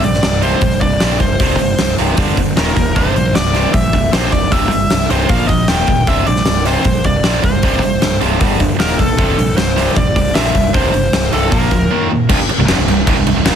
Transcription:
0.04 A#1 C2 G2 D5, open hi-hat
0.14 snare
0.23 C1 C2 G2, snare, open hi-hat
0.42 C2 G2 C3 C5, open hi-hat
0.61 A#1 C2 G2, kick, open hi-hat
0.81 C1 C2 G2 D5, kick, open hi-hat
1.00 A#1 C2 G2 C3, snare, open hi-hat
1.20 C1 C2 G2 C5, kick, open hi-hat
1.40 C1 C2 G2 C3, kick, open hi-hat
1.59 G1 C2 G2, open hi-hat
1.78 C1 C2 G2, snare, open hi-hat
1.98 C1 C2 G2 C3, open hi-hat
2.17 G1 G2 D3 G3, kick, open hi-hat
2.37 G1 G2 D3, kick, open hi-hat
2.57 D#1 D#2 A#2 D#3 A#4, snare, open hi-hat
2.76 D#1 D#2 A#2 A#4, kick, open hi-hat
2.95 C1 C2 G2 C3 C5, kick, open hi-hat
3.14 A#1 C2 G2, open hi-hat
3.33 C1 C2 G2 D5, snare, open hi-hat
3.53 C2 G2 C3, snare, open hi-hat
3.73 A#1 C2 G2 E5, kick, open hi-hat
3.92 C1 C2 G2, kick, open hi-hat
4.11 A#1 C2 G2 C3 C5, snare, open hi-hat
4.32 C1 C2 G2 D5, kick, open hi-hat
4.51 C1 C2 G2 C3 E5, kick, open hi-hat
4.71 G1 C2 G2, open hi-hat
4.90 C1 C2 G2, snare, open hi-hat
5.09 C1 C2 G2 C3 C5, open hi-hat
5.29 A#1 A#2 F3 A#3 F5, kick, open hi-hat
5.48 A#1 A#2 F3 D#5, kick, open hi-hat
5.68 D#1 D#2 A#2 D#3 G5, snare, open hi-hat
5.87 D#1 D#2 A#2, kick, open hi-hat
6.07 C1 C2 G2 C3 E5, kick, open hi-hat
6.27 A#1 C2 G2 D5, open hi-hat
6.36 snare
6.45 C1 C2 G2, snare, open hi-hat
6.65 C2 G2 C3 C5, snare, open hi-hat
6.85 A#1 C2 G2, kick, open hi-hat
7.04 C1 C2 G2 D5, kick, open hi-hat
7.23 A#1 C2 G2 C3, snare, open hi-hat
7.43 C1 C2 G2 C5, kick, open hi-hat
7.62 C1 C2 G2 C3, kick, open hi-hat
7.82 G1 C2 G2, open hi-hat
8.01 C1 C2 G2, snare, open hi-hat
8.20 C1 C2 G2 C3, open hi-hat
8.41 G1 G2 D3 G3, kick, open hi-hat
8.60 G1 G2 D3, kick, open hi-hat
8.80 D#1 D#2 A#2 D#3 A#4, snare, open hi-hat
8.99 B1 D#2 A#2 A4, kick, open hi-hat
9.18 C1 C2 G2 C3, kick, open hi-hat
9.38 A#1 C2 G2, open hi-hat
9.57 C1 C2 G2 C5, snare, open hi-hat
9.76 C2 G2 C3, snare, open hi-hat
9.96 A#1 C2 G2 D5, kick, open hi-hat
10.16 C1 C2 G2, kick, open hi-hat
10.35 A#1 C2 G2 C3 E5, snare, open hi-hat
10.55 C1 C2 G2, kick, open hi-hat
10.74 C1 C2 G2 C3 C5, kick, open hi-hat
10.94 G1 C2 G2, open hi-hat
11.13 C1 C2 G2, snare, open hi-hat
11.33 C1 C2 G2 C3 A4, open hi-hat
11.51 A#1 A#2 F3 A#3 A#4, kick, open hi-hat
11.71 D1 A#2 F3, kick, open hi-hat
11.91 D#2 A#2 D#3
12.10 D#2 A#2
12.29 C1 C2 G2, kick, crash
12.39 muted distorted electric guitar stroke, muted fingered electric bass stroke
12.48 muted distorted electric guitar stroke, muted fingered electric bass stroke, crash
12.58 C1 C2 G2
12.67 F1 F2 C3, snare, crash
12.77 C1 C2 G2
12.86 C1 C2 G2, crash
13.06 C1 C2 G2, kick, crash
13.15 C1 C2 G2
13.25 C1 C2 G2, crash
13.34 C1 C2 G2
13.43 D#1 D#2 A#2, snare, crash

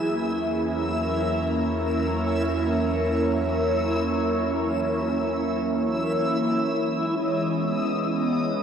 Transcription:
Already playing: E2 E3 F#3 A#3 E4 G#4 E5 E6
0.11 C#4
0.57 A#4
1.74 C#5
6.59 E2 E3 D#5 D#6
6.84 G#3
7.51 B3
8.41 G#4

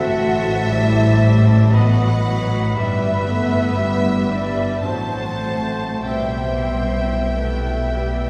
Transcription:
Already playing: A1 A2 E3 A3 F#4 C5 E5 F#5 A5
0.16 A3 C4
0.43 E4
0.68 G3 E4 A4 E5
0.96 E4
1.21 A4
1.48 E4
1.72 A2 F#3 B3 B4 D#5 F#5 B5
2.00 A3
2.25 F#3 B3
2.50 D#4
2.75 G1 G2 G3 B3 B4 E5
3.02 G3
3.27 A3 B3
3.52 E4
3.78 G3 G4 E5
4.03 E4
4.29 D4 G4 B4 D5
4.57 E4
4.82 A1 A2 C4 C5 F#5 A5
4.87 A2 F#3 A3 C5 A5
5.13 F#3
5.44 A3
5.75 F#4
6.05 B1 B2 G3 B3 C4 E5 G5
6.10 C5
6.39 B3
6.71 G3
7.03 E4
7.32 G3 A3 B3 G4 E5
7.36 B4
7.64 E4
7.94 G3 G4
8.24 E4

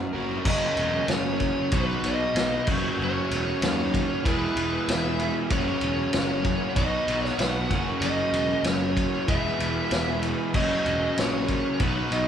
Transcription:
Already playing: F#2 C#3 F#3 A#3 C#4 F#4 G#4 A#4
0.13 F#1 F#3 B3 C4 C#4 F#4 A#4
0.19 D4 E4
0.24 F4 G4
0.29 F#3 A#3 C#4 G#4 A4 B4
0.35 C5 D5
0.41 F#1 E5 F5
0.45 F#2 C#3 F#3 A#3 C#4 F#4 A#4 C#5 D#5, kick, crash
0.61 F#3 A#3 C#4 F#4
0.77 E1, ride
0.93 F#3 A#3 C#4 F#4
1.08 F#1 F#2 C#3 F#3 A#3 C#4 F#4, snare, ride
1.12 C#5
1.40 F#3 A#3 C#4 F#4, kick, ride
1.72 B1 B2 F#3 B3 D#4 F#4 B4 D#5, kick, ride
1.88 B3 F#4
2.03 B1 D#5, ride
2.35 B1 B2 F#3 B3 D#4 F#4, snare, ride
2.67 F#1 F#2 C#3 F#3 A#3 C#4 F#4 A#4 C#5, kick, crash
2.71 F#4
2.84 F#3 A#3 C#4 F#4
2.99 F#1 F#2 C#3 F#3 A#3 C#4
3.03 F#4 C#5
3.17 F#3 A#3 C#4 F#4
3.31 E1, ride
3.47 F#3 A#3 C#4 F#4
3.62 D#2 F#2 C#3 F#3 A#3 C#4 F#4 C#5, snare, ride
3.94 F#3 A#3 C#4 F#4, kick, ride
4.25 E1 E3 G#3 B3 E4 G#4 B4, kick, ride
4.42 B3 E4 G#4
4.56 E1, ride
4.88 E1 E3 E4 G#4 E5, snare, ride
5.19 E3 B3 E4, ride
5.24 G#4
5.36 B3 G#4
5.50 F#1 F#2 C#3 F#3 A#3 C#4 F#4 A#4 C#5, kick, ride
5.67 F#3 A#3 C#4 F#4
5.81 E1, ride
5.98 F#3 A#3 C#4 F#4
6.13 F#1 F#2 C#3 F#3 A#3 C#5, snare, ride
6.17 C#4 F#4
6.44 F#3 A#3 C#4, kick, ride
6.49 F#4
6.76 B1 B2 F#3 B3 D#4 F#4 B4 D#5, kick, ride
6.80 F#4
6.93 F#4
7.08 B1, ride
7.24 C#5, snare
7.39 B1 B2 F#3 B3 D#4 F#4 F#5, snare, ride
7.56 B3 F#4
7.70 F#1 F#2 C#3 F#3 A#3 C#4 F#4 A#4, kick, ride
7.86 F#3 A#3 C#4 F#4
8.01 F#1 F#2 C#3 F#3 A#3 C#4 F#4 D#5, ride
8.32 E1, ride
8.50 F#3 A#3 C#4
8.63 F#1 F#2 C#3 F#3 A#3 C#5, snare, ride
8.68 C#4 F#4
8.96 F#3 A#3 C#4 F#4, kick, ride
9.28 E1 E3 G#3 B3 E4 G#4 B4 E5, kick, ride
9.44 B3 E4 G#4
9.60 E1, ride
9.91 E1 E3 E4 G#4, snare, ride
10.07 B3 E4 G#4
10.22 E3 B3 E4 G#4, ride
10.38 B3 E4 G#4
10.53 F#1 F#2 C#3 F#3 A#3 C#4 F#4 A#4 D#5, kick, crash
10.70 F#3 A#3 C#4 F#4
10.86 E1, ride
11.02 F#3 A#3 C#4
11.16 A#1 F#2 C#3 F#3 A#3 C#4 F#4 C#5, snare, ride
11.47 F#3 A#3 C#4 F#4, kick, ride
11.80 B1 B2 F#3 B3 D#4 F#4 B4, kick, ride
11.96 B3 D#4 F#4
12.12 B1 D#5, ride

